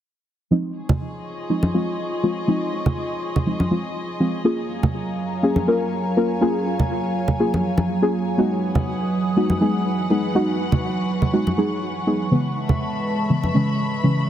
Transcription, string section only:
0.75 5.25 G#4 medium
1.20 5.73 D#5 medium
4.45 9.02 F#3 medium
4.52 9.96 C#5 medium
5.12 9.37 G#5 medium
8.38 13.90 E3 medium
8.55 13.54 B4 medium
8.71 13.09 F#5 medium
12.61 14.29 E5 medium
12.61 14.29 B5 medium

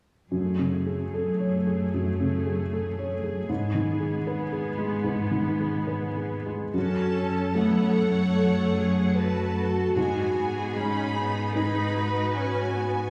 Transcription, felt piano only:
0.31 1.89 F#2 soft
0.59 1.02 C#3 soft
0.86 1.30 G#4 soft
1.14 1.57 A4 soft
1.40 1.83 C#5 soft
1.67 2.09 G#4 soft
1.94 3.45 F#2 soft
2.20 2.62 C#3 soft
2.46 2.88 G#4 soft
2.73 3.14 A4 soft
2.99 3.39 C#5 soft
3.24 3.49 G#4 soft
3.49 5.02 G#2 soft
3.74 4.16 D#3 soft
4.00 4.42 G#4 soft
4.27 4.69 B4 soft
4.53 4.95 G#4 soft
4.78 5.21 G#3 soft
5.04 6.70 G#2 soft
5.31 5.77 D#3 soft
5.60 6.06 G#4 soft
5.87 6.34 B4 soft
6.17 6.63 G#4 soft
6.46 6.74 G#3 soft
6.74 9.93 F#2 soft
7.55 8.85 A3 soft
8.36 9.92 A4 soft
8.36 9.93 C#5 soft
9.96 13.07 G#2 soft
10.76 12.03 G#3 soft
11.55 13.08 D#4 soft
11.55 13.08 B4 soft

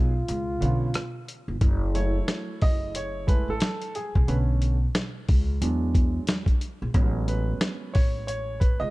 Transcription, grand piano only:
0.00 0.10 F#3 medium
0.00 0.11 B3 medium
0.00 0.11 D#4 medium
0.00 0.12 G#4 medium
0.60 0.86 D3 medium
0.60 0.87 B3 medium
0.60 0.87 C#4 medium
0.60 0.88 F4 medium
1.94 4.24 F#3 medium
1.94 3.26 A3 soft
1.94 3.26 E4 medium
1.94 2.64 C#5 medium
2.62 2.96 D#5 loud
2.96 3.30 C#5 medium
3.27 3.57 G#3 medium
3.27 3.58 A3 soft
3.27 3.58 E4 medium
3.27 3.49 B4 loud
3.50 3.92 A4 medium
3.96 4.30 G#4 medium
4.27 4.75 D3 medium
4.27 4.75 A3 soft
4.27 4.75 C#4 medium
4.27 4.36 B4 medium
5.61 6.57 F#3 soft
5.61 6.58 G#3 soft
5.61 6.58 D4 medium
6.94 8.90 F#3 medium
6.94 8.90 G#3 medium
6.94 8.90 B3 soft
6.94 8.90 C#4 medium
7.28 7.97 B4 medium
7.94 8.26 C#5 medium
8.27 8.59 C#5 medium
8.60 8.79 B4 medium
8.80 8.90 D#5 loud

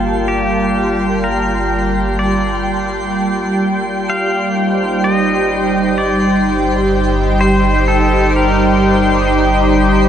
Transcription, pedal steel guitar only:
0.00 0.28 A4 medium
0.28 1.19 G4 medium
1.24 2.19 A#4 medium
2.19 3.57 D5 medium
4.10 5.04 F5 medium
5.04 5.98 D#5 medium
5.98 6.89 D5 medium
7.41 7.90 C5 medium
7.88 8.37 A4 medium
8.36 9.28 A#4 medium

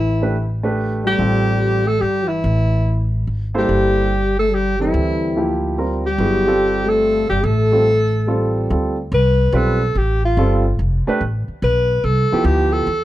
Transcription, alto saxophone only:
0.00 0.61 E4 medium
1.07 1.89 G4 medium
1.87 2.03 A4 medium
2.01 2.30 G4 medium
2.28 3.12 E4 medium
3.58 4.36 G4 medium
4.39 4.56 A4 medium
4.54 4.81 G4 medium
4.81 5.60 E4 medium
6.06 6.90 G4 medium
6.89 7.29 A4 loud
7.29 7.46 G4 medium
7.44 8.56 A4 medium
9.14 9.58 B4 loud
9.56 10.00 A4 medium
9.98 10.24 G4 medium
10.25 10.76 F4 medium
11.64 12.06 B4 loud
12.05 12.47 A4 medium
12.45 12.74 G4 medium
12.73 13.04 A4 medium

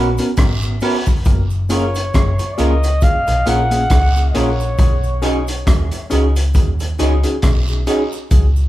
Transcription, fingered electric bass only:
0.00 0.17 A#1 medium
0.38 0.79 G#1 medium
1.26 2.10 F#1 medium
2.15 2.38 F#1 medium
2.59 2.99 C#2 medium
3.28 3.45 B1 medium
3.47 3.87 A#1 medium
3.91 4.32 C#2 medium
4.35 4.76 A#1 medium
4.79 5.63 B1 loud
5.67 5.90 D#2 loud
6.12 6.52 C#2 medium
6.55 6.96 D#2 medium
7.00 7.23 C#2 medium
7.43 7.84 B1 medium
8.31 8.69 C#2 loud

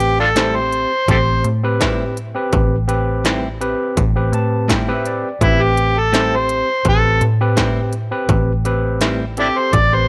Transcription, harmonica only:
0.00 0.19 G4 medium
0.20 0.28 D4 medium
0.20 0.28 F4 medium
0.20 0.57 A4 medium
0.56 1.07 C5 medium
1.10 1.18 G4 medium
1.10 1.16 A4 medium
1.10 1.44 C5 medium
5.43 5.64 E4 medium
5.63 6.00 G4 medium
5.98 6.37 A4 medium
6.36 6.86 C5 medium
6.89 7.22 A4 medium
9.40 9.46 D4 medium
9.40 9.47 E4 medium
9.40 9.60 G4 medium
9.59 9.76 C5 medium
9.75 9.96 D5 medium
9.94 10.08 C5 medium

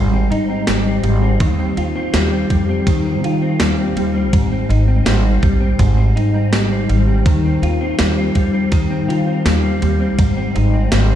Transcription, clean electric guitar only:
0.00 1.48 G#2 medium
0.00 0.51 D#3 medium
0.00 0.67 G3 medium
0.00 0.13 C4 medium
0.00 0.31 D#4 medium
0.13 0.49 C4 medium
0.31 1.77 D#4 medium
0.50 0.86 C4 medium
0.68 1.03 G3 medium
0.86 1.21 C4 medium
1.03 1.81 G3 medium
1.22 1.59 C4 medium
1.41 2.86 D#3 medium
1.59 1.95 C4 medium
1.78 3.23 F4 medium
1.96 2.32 C4 medium
2.13 2.50 G3 medium
2.32 2.69 C4 medium
2.50 3.59 G3 medium
2.69 3.05 C4 medium
2.87 6.37 D#3 medium
3.05 3.41 C4 medium
3.24 4.41 F4 medium
3.42 3.78 C4 medium
3.60 3.96 G3 medium
3.78 4.14 C4 medium
3.97 5.05 G3 medium
4.15 4.51 C4 medium
4.33 5.78 G#2 medium
4.52 4.87 C4 medium
4.70 6.16 D#4 medium
4.88 5.24 C4 medium
5.06 5.41 G3 medium
5.24 5.60 C4 medium
5.42 6.52 G3 medium
5.60 5.97 C4 medium
5.79 7.33 G#2 medium
5.97 6.34 C4 medium
6.16 7.62 D#4 medium
6.34 6.71 C4 medium
6.53 6.89 G3 medium
6.71 7.08 C4 medium
6.90 7.66 G3 medium
7.08 7.45 C4 medium
7.26 8.71 D#3 medium
7.45 7.81 C4 medium
7.63 9.07 F4 medium
7.81 8.17 C4 medium
7.99 8.35 G3 medium
8.17 8.53 C4 medium
8.36 9.44 G3 medium
8.54 8.90 C4 medium
8.72 11.15 D#3 medium
8.90 9.26 C4 medium
9.09 10.26 F4 medium
9.27 9.63 C4 medium
9.45 9.81 G3 medium
9.63 10.00 C4 medium
9.82 10.92 G3 medium
10.00 10.36 C4 medium
10.19 11.15 G#2 medium
10.37 10.73 C4 medium
10.55 11.15 D#4 medium
10.74 11.10 C4 medium
10.92 11.15 G3 medium
11.10 11.15 C4 medium

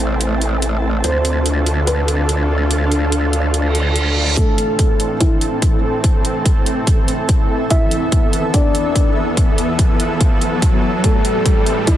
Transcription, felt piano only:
1.04 1.79 C5 loud
1.87 2.42 B4 medium
4.37 5.13 A3 medium
4.37 5.13 A4 medium
5.21 5.75 E3 medium
5.21 5.75 E4 medium
7.71 8.46 E4 medium
7.71 8.46 E5 loud
8.54 9.08 D4 medium
8.54 9.08 D5 medium
11.04 11.79 A3 medium
11.04 11.79 A4 loud
11.87 11.97 E3 medium
11.87 11.97 E4 medium

